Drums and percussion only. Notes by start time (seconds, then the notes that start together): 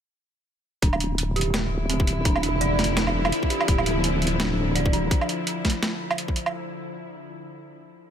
0.82 kick, closed hi-hat
0.93 low woodblock
1.00 closed hi-hat
1.18 closed hi-hat
1.36 closed hi-hat
1.41 closed hi-hat
1.54 snare, closed hi-hat
1.90 closed hi-hat
2.00 kick
2.07 closed hi-hat
2.25 kick, closed hi-hat
2.36 low woodblock
2.43 closed hi-hat
2.61 closed hi-hat
2.79 snare, closed hi-hat
2.84 closed hi-hat
2.97 snare, closed hi-hat
3.07 low woodblock
3.25 low woodblock
3.32 closed hi-hat
3.43 kick
3.50 closed hi-hat
3.61 low woodblock
3.68 kick, closed hi-hat
3.78 low woodblock
3.86 closed hi-hat
4.04 closed hi-hat
4.22 closed hi-hat
4.27 closed hi-hat
4.40 snare, closed hi-hat
4.75 closed hi-hat
4.86 kick
4.93 closed hi-hat
5.11 kick, closed hi-hat
5.21 low woodblock
5.29 closed hi-hat
5.47 closed hi-hat
5.65 kick, snare, closed hi-hat
5.70 closed hi-hat
5.83 snare, closed hi-hat
6.11 low woodblock
6.18 closed hi-hat
6.28 kick
6.36 closed hi-hat
6.46 low woodblock